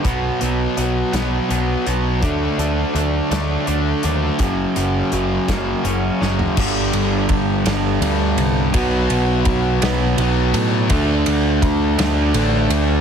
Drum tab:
CC |------------|------------|------------|x-----------|
RD |------------|------------|------------|--x-x-x-x-x-|
HH |x-x-x-x-x-x-|x-x-x-x-x-x-|x-x-x-x-x---|------------|
SD |------o-----|------o-----|------o---o-|------o-----|
FT |------------|------------|-----------o|------------|
BD |o-----------|o-----------|o-----o-----|o---o-------|

CC |------------|------------|
RD |x-x-x-x-x-x-|x-x-x-x-x-x-|
HH |------------|------------|
SD |------o-----|------o-----|
FT |------------|------------|
BD |o---o-------|o---o-------|